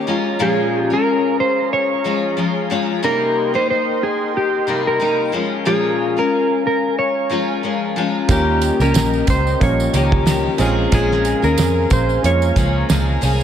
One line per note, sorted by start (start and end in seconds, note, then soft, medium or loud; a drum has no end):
0.00 2.99 C#4 medium
0.00 2.98 A#5 medium
0.07 0.38 F3 medium
0.07 0.39 G#3 medium
0.07 0.39 C#4 medium
0.07 0.39 F4 medium
0.07 3.00 G#4 medium
0.07 3.00 F5 medium
0.39 0.90 A#2 medium
0.39 0.91 F3 medium
0.39 0.91 G#3 medium
0.39 0.90 C#4 medium
0.39 0.89 F4 loud
0.39 0.80 G#4 medium
0.80 0.93 G4 medium
0.90 2.04 G#3 soft
0.90 2.04 C#4 medium
0.90 2.04 F4 medium
0.90 1.40 A#4 medium
1.40 1.73 C5 loud
1.73 2.34 C#5 loud
2.04 2.35 F3 medium
2.04 2.36 G#3 medium
2.04 2.37 C#4 medium
2.04 2.37 F4 medium
2.37 2.69 F3 medium
2.37 2.70 G#3 medium
2.37 2.70 C#4 medium
2.37 2.71 F4 medium
2.70 3.02 F3 medium
2.70 3.03 G#3 medium
2.70 3.03 C#4 medium
2.70 3.04 F4 medium
3.02 3.54 C3 medium
3.02 3.54 G3 medium
3.02 3.54 A#3 medium
3.02 3.53 D#4 medium
3.02 8.25 A#4 medium
3.02 3.55 A#4 loud
3.02 5.30 D#5 medium
3.02 5.30 G5 medium
3.02 5.30 C6 medium
3.54 4.68 A#3 soft
3.54 4.67 D#4 medium
3.54 3.69 C5 loud
3.70 4.03 C5 loud
4.03 4.36 G#4 medium
4.37 4.83 G4 loud
4.67 4.99 C3 medium
4.67 4.99 G3 medium
4.67 5.00 A#3 medium
4.67 5.00 D#4 medium
4.87 5.31 A#4 medium
5.00 5.32 C3 medium
5.00 5.33 G3 medium
5.00 5.33 A#3 medium
5.00 5.34 D#4 medium
5.32 5.65 F3 medium
5.32 5.65 G#3 medium
5.32 5.65 C#4 medium
5.32 5.65 F4 medium
5.32 8.26 F5 medium
5.32 8.26 G#5 medium
5.32 13.43 A#5 medium
5.65 6.17 A#2 medium
5.65 6.17 F3 medium
5.65 6.17 G#3 medium
5.65 6.17 C#4 medium
5.65 6.15 F4 medium
5.65 6.19 G#4 medium
6.17 7.29 G#3 soft
6.17 7.31 C#4 medium
6.17 7.30 F4 medium
6.17 6.66 A#4 medium
6.67 6.98 A#4 medium
6.99 7.60 C#5 loud
7.30 7.62 F3 medium
7.30 7.62 G#3 medium
7.30 7.63 C#4 medium
7.30 7.64 F4 medium
7.63 7.95 F3 medium
7.63 7.95 G#3 medium
7.63 7.97 C#4 medium
7.63 7.97 F4 medium
7.96 8.29 F3 medium
7.96 8.29 G#3 medium
7.96 8.29 C#4 medium
7.96 8.30 F4 medium
8.28 8.70 D#2 loud
8.28 8.80 D#3 medium
8.28 9.34 G3 medium
8.28 9.34 A#3 medium
8.28 8.80 A#3 medium
8.28 9.34 C#4 medium
8.28 8.80 C#4 medium
8.28 9.35 F4 medium
8.28 8.79 G4 medium
8.28 8.82 G4 medium
8.28 13.43 A#4 medium
8.28 10.57 D#5 medium
8.28 10.57 G5 medium
8.28 kick loud
8.28 closed hi-hat medium
8.28 tambourine medium
8.62 closed hi-hat medium
8.62 tambourine soft
8.80 8.92 C#2 medium
8.80 9.94 A#3 medium
8.80 9.95 C#4 medium
8.80 9.94 G4 medium
8.80 9.25 A#4 medium
8.80 tambourine soft
8.94 9.21 A#1 medium
8.94 snare loud
8.94 closed hi-hat medium
8.94 tambourine medium
9.14 tambourine soft
9.27 9.54 C#2 loud
9.27 9.63 C5 loud
9.27 kick loud
9.27 closed hi-hat medium
9.27 tambourine soft
9.47 tambourine soft
9.59 9.87 A#1 loud
9.59 9.67 F3 medium
9.59 10.59 A#3 medium
9.59 10.58 C#4 medium
9.59 10.59 F4 medium
9.59 10.24 C#5 loud
9.59 kick loud
9.59 closed hi-hat medium
9.66 10.62 G3 medium
9.80 tambourine soft
9.93 10.46 C#2 loud
9.93 10.25 D#3 medium
9.93 10.26 A#3 medium
9.93 10.26 C#4 medium
9.93 10.27 G4 medium
9.93 closed hi-hat medium
9.93 tambourine soft
10.12 kick medium
10.26 10.59 D#3 medium
10.26 10.58 A#3 medium
10.26 10.59 C#4 medium
10.26 10.60 G4 medium
10.26 snare loud
10.26 closed hi-hat medium
10.26 tambourine medium
10.58 10.86 A#1 medium
10.58 10.91 F3 medium
10.58 11.65 G#3 loud
10.58 10.92 G#3 medium
10.58 11.65 C4 medium
10.58 11.66 C#4 medium
10.58 10.92 C#4 medium
10.58 11.66 F4 loud
10.58 10.92 G#4 medium
10.58 13.43 F5 medium
10.58 13.43 G#5 medium
10.58 closed hi-hat medium
10.58 tambourine medium
10.92 11.33 A#1 loud
10.92 11.43 A#2 medium
10.92 11.43 F3 medium
10.92 11.43 G#3 medium
10.92 11.42 C#4 medium
10.92 11.41 G#4 medium
10.92 11.46 G#4 medium
10.92 kick loud
10.92 closed hi-hat medium
10.92 tambourine medium
11.11 snare soft
11.25 closed hi-hat medium
11.25 tambourine soft
11.42 11.55 D#2 medium
11.42 12.56 G#3 soft
11.42 12.56 C#4 medium
11.42 12.56 G#4 medium
11.42 11.92 A#4 medium
11.42 tambourine soft
11.58 11.84 F2 loud
11.58 snare loud
11.58 closed hi-hat medium
11.58 tambourine medium
11.90 12.17 A#1 loud
11.90 12.25 C5 loud
11.90 kick loud
11.90 closed hi-hat medium
11.90 tambourine medium
12.09 tambourine soft
12.23 12.50 F2 loud
12.23 13.28 G#3 medium
12.23 13.29 A#3 medium
12.23 13.29 C#4 medium
12.23 13.30 F4 medium
12.23 12.87 C#5 loud
12.23 closed hi-hat medium
12.42 tambourine soft
12.56 12.83 C#2 loud
12.56 12.88 F3 medium
12.56 12.88 G#3 medium
12.56 12.89 C#4 medium
12.56 12.90 G#4 medium
12.56 kick loud
12.56 closed hi-hat medium
12.56 tambourine soft
12.89 13.16 C#2 loud
12.89 13.20 F3 medium
12.89 13.21 G#3 medium
12.89 13.22 C#4 medium
12.89 13.22 G#4 medium
12.89 snare loud
12.89 closed hi-hat medium
12.89 tambourine medium
13.21 13.43 C2 medium
13.21 13.43 F3 medium
13.21 13.43 G#3 medium
13.21 13.43 C#4 medium
13.21 13.43 G#4 medium
13.21 open hi-hat medium
13.21 tambourine medium